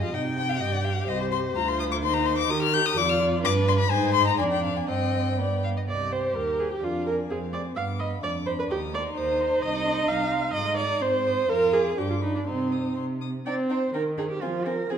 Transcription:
Already playing: D#5
0.02 F2 F4 F5
0.14 C3 D#4 D#5 G5
0.38 G5
0.50 F5
0.60 G2 G4 D#5
0.73 D5
0.85 F5
1.08 C2 C5 D#5
1.21 C5
1.32 C6
1.56 D2 F4 A#5
1.69 C6
1.80 D#6
1.92 D6
2.02 D#2 D#4 C5 C6
2.14 A#5
2.26 C6
2.38 D6
2.49 D#3 G4 A#4 D#6
2.63 F6
2.74 G6
2.86 D#6
2.96 F2 F4 D5 D6
3.10 F6
3.43 G2 D4 B4 D6
3.68 C6
3.79 B5
3.91 G#2 D#4 C5 G#5
4.14 C6
4.27 A#5
4.38 F2 D4 D5 G#5
4.52 G5
4.64 F5
4.77 G#5
4.88 G2 C4 D#5 G5
5.38 B3 D5
5.64 F5
5.77 D#5
5.88 C2 G4 D5 D#5
6.12 C5 G5
6.35 D#2 A#4 A#5
6.59 G#4 G5
6.72 G4
6.82 F2 D4 F4 F5
7.07 A#4 G#5
7.30 F2 C4 G#4 F5
7.53 D5 G#5
7.76 G2 B3 F5 D6
7.99 D#5 B5
8.22 F2 D4 D5 D6
8.46 C5 B5
8.59 B4
8.70 D#2 D#4 G4 D#6
8.94 D5 C6
9.16 D#2 C5 D#6
9.40 C6
9.62 C2 D#5 D#6
9.86 C6
10.08 C2 F5 D#6
10.32 C6
10.54 G#2 D#5 C6
10.78 D5 D#6
11.01 G#2 C4 C5 C6
11.27 D#6
11.49 F2 F4 A#4 F6
11.73 G#4 D6
11.97 G2 D4 G4 D6
12.10 F4
12.22 D#4 B5
12.36 D4
12.47 C3 C4 D#4 C6
12.72 D#6
12.97 C3 C6
13.21 D#6
13.46 C4 D#4 D5 G5
13.70 D#4 C5 G5
13.94 D#3 D#4 A#4 G5
14.18 D#4 G#4 G5
14.30 G4
14.42 F3 C4 F4 G#5
14.66 C4 A#4 G#5
14.90 F3 C4 G#4 G#5

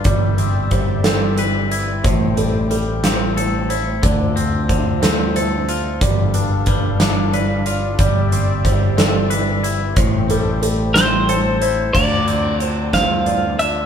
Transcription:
Already playing: G3
0.04 G1 G3 G4 D5 E5, kick, closed hi-hat
0.38 C4, closed hi-hat
0.71 G3 C5, kick, closed hi-hat
1.04 C4 A4, snare, closed hi-hat
1.38 B4, closed hi-hat
1.71 E4, closed hi-hat
2.03 A1 A2 A3 E4 C5 G5, kick, closed hi-hat
2.37 G3 A4, closed hi-hat
2.71 G3 A4, closed hi-hat
3.03 C4, snare, closed hi-hat
3.37 A4 C5, closed hi-hat
3.70 E4 C5, closed hi-hat
4.02 D2 D3 D4 F4 D5 E5, kick, closed hi-hat
4.36 C4, closed hi-hat
4.69 D3 C5, kick, closed hi-hat
5.02 C4 A4, snare, closed hi-hat
5.36 A4 C5, closed hi-hat
5.69 F4, closed hi-hat
6.01 G1 G3 D4 A4 D5 F5, kick, closed hi-hat
6.34 D4 B4, closed hi-hat
6.66 G3 B4, kick, closed hi-hat
7.00 D4, snare, closed hi-hat
7.32 B4 D5, closed hi-hat
7.66 F4 D5, closed hi-hat
7.99 G1 G3 G4 D5 E5, kick, closed hi-hat
8.32 C4, closed hi-hat
8.65 G3 C5, kick, closed hi-hat
8.97 C4 A4, snare, closed hi-hat
9.30 B4, closed hi-hat
9.63 E4, closed hi-hat
9.96 A1 A2 A3 A4 C5 G5, kick, closed hi-hat
10.30 G3 A4, closed hi-hat
10.62 G3 A4, closed hi-hat
10.94 C4 C5, snare, closed hi-hat
11.29 A4 C5, closed hi-hat
11.61 E4 C5, closed hi-hat
11.93 D2 D3 D4 F4 C5 D5 F5, kick, crash
12.28 C4, closed hi-hat
12.60 D3 C5, closed hi-hat
12.65 C5
12.93 C4 C5 F5, kick, snare, closed hi-hat
13.26 F4 D5, closed hi-hat
13.59 D3 D5 E5, closed hi-hat

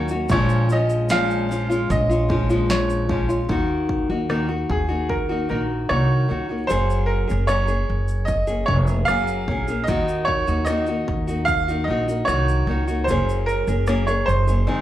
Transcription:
Already playing: D#2 C#3 D#3 F#3 A#3 C#4 D#4
0.09 C#4 F#4, shaker
0.14 A#3
0.29 A#1 A#2 F3 G#3 C#4 F4 C#5, kick, shaker
0.49 shaker
0.70 F3 G#3 C#4 F4 D#5, shaker
0.90 shaker
1.09 A#2 F3 G#3 C#4 F4 F5, snare, shaker
1.31 shaker
1.49 F3 G#3 C#4 F4, shaker
1.70 G#3 C#4 F4, shaker
1.90 A#1 D#5, kick, shaker
2.10 G#3 C#4 F4, shaker
2.29 F3 G#3 C#4 F4, kick
2.50 A#2 F3 G#3 C#4 F4, shaker
2.70 C#5, snare, shaker
2.90 shaker
3.09 F3 G#3 C#4 F4, kick
3.29 G#3 C#4 F4, shaker
3.49 D#2 D#3 A#3 D#4 F#4, kick
3.89 kick
4.10 D#2 A#3 D#4 F#4
4.29 D#3 A#3 D#4 F#4, cross-stick
4.49 A#3 D#4 F#4
4.70 D#2 G#4, kick
4.89 A#3 D#4 F#4
5.09 A#4, kick
5.29 A#3 D#4 F#4
5.49 A#1 D#3 A#3 D#4 F#4 A#4
5.89 C2 D#3 A#3 D#4 F#4 C#5, cross-stick
6.28 C#2 D#3 A#3 D#4 F#4
6.49 A#3 D#4 F#4
6.67 F#1 F#3 A#3 C#4 G#4 C5, shaker
6.90 shaker
7.06 A#4
7.28 F#1 A#3 C#4 G#4, shaker
7.47 F#3 A#3 C#4 G#4 C#5, cross-stick, shaker
7.68 A#3 C#4 G#4, shaker
7.89 F#1
8.08 shaker
8.25 D#5, kick, shaker
8.47 A#3 C#4 G#4, shaker
8.66 F1 F#3 A#3 C#5, kick
8.70 C#4 G#4
8.87 A#3 C#4 G#4, shaker
9.05 F#1 F#3 A#3 F5, cross-stick, shaker
9.09 C#4 G#4
9.28 shaker
9.48 A#1 F#3 A#3 C#4 G#4, kick
9.68 A#3 C#4 G#4, shaker
9.84 D#5, shaker
9.88 D#2 D#3 A#3 D#4 F#4, kick
10.08 shaker
10.25 C#5, kick
10.47 D#2 A#3 D#4 F#4, shaker
10.65 D#3 D#5, cross-stick, shaker
10.69 A#3 D#4 F#4
10.87 A#3 D#4 F#4, shaker
11.08 D#2, kick
11.27 A#3 D#4 F#4, shaker
11.45 F5, kick, shaker
11.68 A#3 D#4 F#4, shaker
11.84 A#1 D#3 D#5
11.89 A#3 D#4 F#4
12.08 A#3 D#4 F#4, shaker
12.25 C2 D#3 A#3 D#4 C#5, cross-stick, shaker
12.29 F#4
12.49 shaker
12.67 C#2 D#3 A#3 D#4 F#4
12.87 A#3 D#4 F#4, shaker
13.04 F#1 C5
13.08 F#3 A#3 C#4 G#4, shaker
13.29 shaker
13.46 A#4, shaker
13.67 F#1 A#3 C#4 G#4, shaker
13.87 F#3 A#3 C#4 G#4, cross-stick, shaker
14.07 A#3 C#4 G#4 C#5, shaker
14.26 F#1 C5, shaker
14.47 A#3 C#4 G#4, shaker
14.67 G#2 D#3 G#3 C4 D#4 G#4

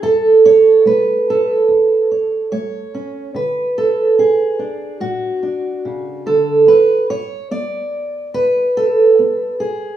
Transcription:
0.02 E2 A4
0.46 C#5
0.85 A3 B4
1.30 A4
1.68 E2
2.11 C#5
2.52 A3 C#5
2.95 C#4
3.35 D3 B4
3.78 A4
4.19 D4 G#4
4.59 D4
5.00 A2 F#4
5.43 D4
5.85 C#3
6.26 D3 A4
6.67 E2 B4
7.10 C#5
7.51 B3 D5
8.34 E2 B4
8.77 A4
9.19 B3
9.60 G#4

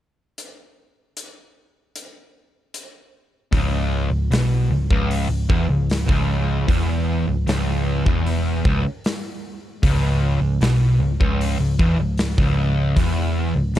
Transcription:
0.38 closed hi-hat
1.17 closed hi-hat
1.96 closed hi-hat
2.74 closed hi-hat
3.52 C#1 C#2, kick, open hi-hat
4.11 C#1 C#2
4.31 B1 B2, snare, open hi-hat
4.69 C#1 C#2
4.90 C#1 C#2, kick
5.11 open hi-hat
5.29 C#1 C#2
5.49 E1 E2, kick
5.69 C#1 C#2
5.90 snare, open hi-hat
6.07 C#1 C#2, kick
6.68 E1 E2, kick, open hi-hat
7.27 C#1 C#2
7.46 C#1 C#2, snare, open hi-hat
8.06 E1 E2, kick
8.26 open hi-hat
8.65 C#1 C#2, kick
9.04 snare, open hi-hat
9.83 C#1 C#2, kick, open hi-hat
10.41 C#1 C#2
10.61 B1 B2, snare, open hi-hat
10.99 C#1 C#2
11.20 C#1 C#2, kick
11.41 open hi-hat
11.58 C#1 C#2
11.79 E1 E2, kick
11.98 C#1 C#2
12.18 snare, open hi-hat
12.38 C#1 C#2, kick
12.97 E1 E2, kick, open hi-hat
13.55 C#1 C#2
13.74 C#1, open hi-hat

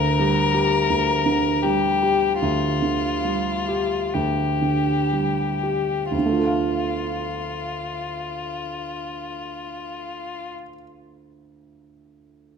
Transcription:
Already playing: D2 D3 A#4
0.19 G3
0.54 G4
0.90 D2
1.26 D3
1.62 G3 G4
2.03 G4
2.41 D2 F4
2.82 D3
3.25 G3
3.68 G4
4.14 D2 G4
4.62 D3
5.13 G3
5.63 G4
6.12 D2 F4
6.18 D3
6.26 A3
6.32 F4
6.39 A4
6.46 F5

